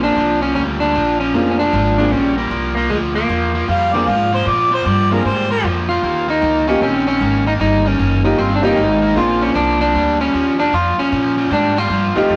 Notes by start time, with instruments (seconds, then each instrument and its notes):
Already playing: upright bass A#1, upright piano A#3 C4 D4 F4 G#4
0.02 overdriven electric guitar A#2 F3, clean electric guitar D4
0.16 upright bass C2, overdriven electric guitar A#2 F3
0.41 overdriven electric guitar A#2 F3, clean electric guitar C#4
0.55 upright bass D2, overdriven electric guitar A#2 G3, clean electric guitar C#4
0.80 overdriven electric guitar A#2 G3, clean electric guitar D4
0.94 upright bass A#1, overdriven electric guitar A#2 F3
1.20 overdriven electric guitar A#2 F3, clean electric guitar C#4
1.34 upright bass F1, overdriven electric guitar A#2 F3, upright piano A#3 C4 D4 F4 G#4
1.51 clean electric guitar C#4
1.59 overdriven electric guitar A#2 F3, clean electric guitar D4
1.73 upright bass G#1, overdriven electric guitar A#2 F3
1.98 overdriven electric guitar A#2 F3, upright piano A#3 C4 D4 F4 G#4, clean electric guitar D4
2.11 upright bass A#1, overdriven electric guitar A#2 G3, clean electric guitar C#4
2.36 overdriven electric guitar A#2 G3, clean electric guitar A#3
2.51 upright bass C2, overdriven electric guitar A#2 F3
2.75 overdriven electric guitar A#2 F3, clean electric guitar A#3
2.90 upright bass D2, overdriven electric guitar A#2 F3, clean electric guitar G#3
3.15 overdriven electric guitar A#2 F3, clean electric guitar A#3
3.29 upright bass E2, overdriven electric guitar A#2 F3
3.54 overdriven electric guitar A#2 F3
3.68 upright bass F2, overdriven electric guitar A#2 G3, harmonica F5
3.94 overdriven electric guitar A#2 G3, upright piano A#3 C4 D4 F4 G#4, harmonica D5
4.06 upright bass G#2, overdriven electric guitar A#2 F3, harmonica F5
4.32 overdriven electric guitar A#2 F3, harmonica C5
4.45 overdriven electric guitar A#2 F3, upright bass A#2, harmonica D5
4.71 overdriven electric guitar A#2 F3, harmonica C5
4.85 upright bass G2, overdriven electric guitar A#2 F3, harmonica D5
5.10 overdriven electric guitar A#2 F3, upright piano A#3 C4 D4 F4 G#4, harmonica A#4
5.25 upright bass G#2, overdriven electric guitar A#2 G3, harmonica C5
5.50 overdriven electric guitar A#2 G3, harmonica A#4
5.64 upright bass F2, overdriven electric guitar A#2 F3
5.89 overdriven electric guitar A#2 F3, clean electric guitar F4
6.03 upright bass D#2, overdriven electric guitar D#3 A#3
6.28 overdriven electric guitar D#3 A#3, clean electric guitar D#4
6.41 upright bass C#2, overdriven electric guitar D#3 A#3
6.67 overdriven electric guitar D#3 A#3, upright piano A#3 C#4 D#4 F4 G4, clean electric guitar C#4
6.81 upright bass A#1, overdriven electric guitar D#3 C4, clean electric guitar C#4
7.07 overdriven electric guitar D#3 C4, clean electric guitar C#4
7.20 upright bass G#1, overdriven electric guitar D#3 A#3
7.46 overdriven electric guitar D#3 A#3, clean electric guitar D#4
7.60 upright bass G1, overdriven electric guitar D#3 A#3, clean electric guitar D#4
7.85 overdriven electric guitar D#3 A#3, clean electric guitar C#4
7.99 upright bass F#1, overdriven electric guitar D#3 A#3
8.24 overdriven electric guitar D#3 A#3, upright piano A#3 C#4 D#4 F4 G4, clean electric guitar D#4
8.38 upright bass G1, overdriven electric guitar D#3 C4, clean electric guitar F4
8.56 clean electric guitar D4
8.62 overdriven electric guitar D#3 C4, upright piano A#3 C#4 D#4 F4 G4, clean electric guitar D#4
8.76 upright bass G#1, overdriven electric guitar D#3 A#3
9.02 overdriven electric guitar D#3 A#3
9.15 upright bass A#1, overdriven electric guitar A#2 F3, upright piano A#3 C4 D4 F4 G#4, clean electric guitar F4
9.41 overdriven electric guitar A#2 F3, clean electric guitar C#4
9.55 upright bass C2, overdriven electric guitar A#2 F3, clean electric guitar D4
9.80 overdriven electric guitar A#2 F3, clean electric guitar D4
9.94 upright bass D2, overdriven electric guitar A#2 G3
10.20 overdriven electric guitar A#2 G3, clean electric guitar C#4
10.33 upright bass D#2, overdriven electric guitar A#2 F3
10.59 overdriven electric guitar A#2 F3, clean electric guitar D4
10.72 upright bass F2, overdriven electric guitar A#2 F3, clean electric guitar F4
10.98 overdriven electric guitar A#2 F3, clean electric guitar C#4, muted upright bass stroke
11.12 overdriven electric guitar A#2 F3, upright bass A#2
11.37 overdriven electric guitar A#2 F3
11.50 upright bass G#2, overdriven electric guitar A#2 G3, clean electric guitar D4
11.76 overdriven electric guitar A#2 G3, clean electric guitar F4
11.89 upright bass G2, overdriven electric guitar A#2 F3
12.15 overdriven electric guitar A#2 F3, upright piano A3 C4 D#4 F4 G4, clean electric guitar F4, muted upright bass stroke
12.28 overdriven electric guitar F2 C3, upright bass F2